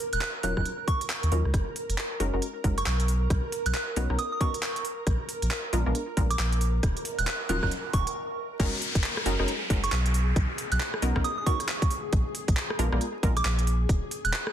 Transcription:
Already playing: ambient pad A#4
0.13 sub bass D#1, synth bell F#6, closed hi-hat
0.21 clap
0.43 sub bass D#1, synth stab F#3 C#4 D#4 F4 A#4, synth bell F#6, open hi-hat
0.57 sub bass D#1, synth stab F#3 C#4 D#4 F4 A#4, synth bell F#6, kick, cross-stick
0.65 closed hi-hat
0.87 synth bell C#6, kick, open hi-hat
1.01 closed hi-hat
1.10 clap
1.23 sub bass D#2, closed hi-hat
1.32 sub bass D#2, synth stab F#3 C#4 D#4 F4 A#4, open hi-hat
1.45 sub bass C#2, cross-stick
1.54 sub bass F#1, kick, cross-stick, closed hi-hat
1.76 open hi-hat
1.89 sub bass F#1, closed hi-hat
1.98 clap
2.20 sub bass F#1, synth stab G#3 C#4 D#4 F#4 A#4, open hi-hat
2.33 sub bass F#1, synth stab G#3 C#4 D#4 F#4 A#4
2.42 closed hi-hat
2.64 sub bass F#1, synth stab G#3 C#4 D#4 F#4 A#4, kick, open hi-hat
2.78 synth bell C#6, cross-stick, closed hi-hat
2.86 sub bass B1, clap
3.00 closed hi-hat
3.08 open hi-hat
3.30 sub bass B1, kick, cross-stick, closed hi-hat
3.52 open hi-hat
3.66 sub bass B1, synth bell F#6, closed hi-hat
3.74 synth bell F#6, clap
3.96 sub bass B1, synth stab B3 C#4 D#4 F#4 A#4, open hi-hat
4.10 sub bass B1, synth stab B3 C#4 D#4 F#4 A#4, cross-stick
4.19 synth bell D#6, closed hi-hat
4.32 synth bell D#6
4.40 synth stab B3 C#4 D#4 F#4 A#4, synth bell C#6, kick, open hi-hat
4.54 closed hi-hat
4.63 clap
4.76 closed hi-hat
4.85 open hi-hat
5.07 sub bass A#1, kick, cross-stick, closed hi-hat
5.29 open hi-hat
5.42 sub bass A#1, closed hi-hat
5.51 clap
5.73 sub bass A#1, synth stab G#3 B3 D4 F4 A#4, open hi-hat
5.86 sub bass A#1, synth stab G#3 B3 D4 F4 A#4
5.95 closed hi-hat
6.17 sub bass A#1, synth stab G#3 B3 D4 F4 A#4, kick, open hi-hat
6.30 synth bell D6, cross-stick, closed hi-hat
6.39 sub bass A#1, clap
6.52 closed hi-hat
6.61 open hi-hat
6.83 sub bass D#1, kick, cross-stick, closed hi-hat, noise sweep
6.97 closed hi-hat
7.05 open hi-hat
7.19 sub bass D#1, synth bell F#6, closed hi-hat
7.27 synth bell F#6, clap
7.49 sub bass D#1, synth stab F#3 C#4 D#4 F4 A#4, synth bell F#6, open hi-hat
7.63 sub bass D#1, synth stab F#3 C#4 D#4 F4 A#4, synth bell F#6, kick, cross-stick
7.71 closed hi-hat
7.93 sub bass D#1, synth bell C#6, kick, open hi-hat
8.07 closed hi-hat
8.59 sub bass F#1, synth stab G#3 C#4 D#4 F#4 A#4, ambient pad G#4, kick, closed hi-hat, crash, downlifter
8.82 open hi-hat
8.95 sub bass F#1, kick, closed hi-hat
9.04 clap
9.17 cross-stick
9.26 sub bass F#1, synth stab G#3 C#4 D#4 F#4 A#4, open hi-hat
9.39 sub bass F#1, synth stab G#3 C#4 D#4 F#4 A#4, cross-stick
9.48 closed hi-hat
9.70 sub bass F#1, synth stab G#3 C#4 D#4 F#4 A#4, kick, open hi-hat
9.84 synth bell C#6, cross-stick, closed hi-hat
9.92 sub bass B1, clap
10.06 closed hi-hat
10.14 open hi-hat
10.36 sub bass B1, kick, closed hi-hat
10.58 open hi-hat
10.72 sub bass B1, synth bell F#6, closed hi-hat
10.80 synth bell F#6, clap
10.94 cross-stick
11.02 sub bass B1, synth stab B3 C#4 D#4 F#4 A#4, open hi-hat
11.16 sub bass B1, synth stab B3 C#4 D#4 F#4 A#4, kick, cross-stick
11.24 synth bell D#6, closed hi-hat
11.38 synth bell D#6
11.46 synth stab B3 C#4 D#4 F#4 A#4, synth bell C#6, kick, open hi-hat
11.60 cross-stick, closed hi-hat
11.68 clap
11.82 kick, closed hi-hat
11.90 open hi-hat
12.13 sub bass A#1, kick, closed hi-hat
12.35 open hi-hat
12.48 sub bass A#1, kick, closed hi-hat
12.57 clap
12.70 cross-stick
12.79 sub bass A#1, synth stab G#3 B3 D4 F4 A#4, open hi-hat
12.92 sub bass A#1, synth stab G#3 B3 D4 F4 A#4, cross-stick
13.01 closed hi-hat
13.23 sub bass A#1, synth stab G#3 B3 D4 F4 A#4, kick, open hi-hat
13.37 synth bell D6, cross-stick, closed hi-hat
13.45 sub bass A#1, clap
13.59 closed hi-hat
13.67 open hi-hat
13.89 sub bass D#1, kick, closed hi-hat
14.11 open hi-hat
14.25 sub bass D#1, synth bell F#6, closed hi-hat
14.33 synth bell F#6, clap
14.47 cross-stick

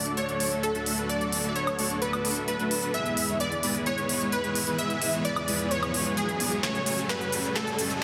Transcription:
Already playing: supersaw synth D2 D3 F#3 A3 D4 F#4 A4 D5, digital synth lead D5, riser
0.06 closed hi-hat
0.17 supersaw synth A3 D4 F#4 A4 D5, digital synth lead C#5, closed hi-hat
0.29 supersaw synth A3 D4 F#4 A4 D5, closed hi-hat
0.40 open hi-hat
0.52 supersaw synth A3 D4 F#4 A4 E5, closed hi-hat
0.63 digital synth lead A4, closed hi-hat
0.75 supersaw synth A3 D4 F#4 A4 E5, closed hi-hat
0.86 open hi-hat
0.98 supersaw synth A3 D4 F#4 A4 B4, closed hi-hat
1.09 supersaw synth A3 B3 D4 F#4 A4 D5, digital synth lead D5, closed hi-hat
1.21 closed hi-hat
1.32 open hi-hat
1.44 supersaw synth A3 D4 F#4 A4 E5, closed hi-hat
1.49 digital synth lead D5
1.56 supersaw synth A3 D4 F#4 A4 B4, digital synth lead C#5, closed hi-hat
1.67 closed hi-hat, high woodblock
1.79 supersaw synth A3 D4 F#4 A4 D5, open hi-hat
1.90 closed hi-hat
2.02 supersaw synth A3 D4 F#4 A4 D5, digital synth lead B4, closed hi-hat
2.13 supersaw synth A3 D4 F#4 A4 D5, closed hi-hat, high woodblock
2.25 open hi-hat
2.36 supersaw synth A3 D4 F#4 A4 E5, closed hi-hat
2.48 digital synth lead B4, closed hi-hat
2.59 supersaw synth A3 D4 F#4 A4 E5, closed hi-hat
2.71 open hi-hat
2.83 supersaw synth A3 D4 F#4 A4 B4, closed hi-hat
2.94 supersaw synth E2 E3 G#3 B3 E4 G#4 B4, digital synth lead E5, closed hi-hat
3.06 closed hi-hat
3.17 open hi-hat
3.29 supersaw synth G#3 B3 E4 G#4 C#5, closed hi-hat
3.40 supersaw synth G#3 B3 E4 G#4 B4, digital synth lead D5, closed hi-hat
3.52 closed hi-hat
3.63 supersaw synth G#3 B3 E4 G#4 B4, open hi-hat
3.75 closed hi-hat
3.86 supersaw synth G#3 B3 E4 G#4 B4, digital synth lead C#5, closed hi-hat
3.98 supersaw synth G#3 B3 E4 G#4 B4, closed hi-hat
4.09 open hi-hat
4.21 supersaw synth G#3 B3 E4 G#4 C#5, closed hi-hat
4.32 digital synth lead B4, closed hi-hat
4.44 supersaw synth G#3 B3 E4 G#4 C#5, closed hi-hat
4.55 open hi-hat
4.67 supersaw synth G#3 B3 E4 G#4 B4, closed hi-hat
4.79 supersaw synth C#3 G#3 B3 E4 G#4 B4, digital synth lead E5, closed hi-hat
4.90 closed hi-hat
5.02 open hi-hat
5.13 supersaw synth G#3 B3 E4 G#4 C#5, closed hi-hat
5.25 supersaw synth G#3 B3 E4 G#4 B4, digital synth lead D5, closed hi-hat
5.36 closed hi-hat, high woodblock
5.48 supersaw synth G#3 B3 E4 G#4 B4, open hi-hat
5.59 closed hi-hat
5.71 supersaw synth G#3 B3 E4 G#4 B4, digital synth lead C#5, closed hi-hat
5.83 supersaw synth G#3 B3 E4 G#4 B4, closed hi-hat, high woodblock
5.94 supersaw synth G#3 B3 E4 G#4 B4, open hi-hat
6.06 closed hi-hat
6.17 supersaw synth G#3 B3 E4 G#4 B4, digital synth lead G#4, closed hi-hat
6.29 closed hi-hat
6.40 supersaw synth G#3 B3 E4 G#4 D5, open hi-hat
6.52 supersaw synth G#3 B3 E4 G#4 C#5, closed hi-hat
6.63 supersaw synth F#2 F#3 A3 C#4 F#4 G#4 A4 G#5, digital synth lead C#5, snare, closed hi-hat, shaker
6.75 closed hi-hat, shaker
6.86 open hi-hat, shaker
6.98 supersaw synth A3 C#4 F#4 G#4 A4, closed hi-hat, shaker
7.09 supersaw synth A3 C#4 F#4 G#4 A4, digital synth lead B4, snare, closed hi-hat, shaker
7.21 closed hi-hat, shaker
7.32 supersaw synth A3 C#4 F#4 G#4 A4, open hi-hat, shaker
7.44 closed hi-hat, shaker
7.56 supersaw synth A3 C#4 F#4 G#4 A4, digital synth lead A4, snare, closed hi-hat, shaker
7.67 closed hi-hat, shaker
7.79 open hi-hat, shaker
7.90 supersaw synth A3 C#4 F#4 G#4 A4, closed hi-hat, shaker

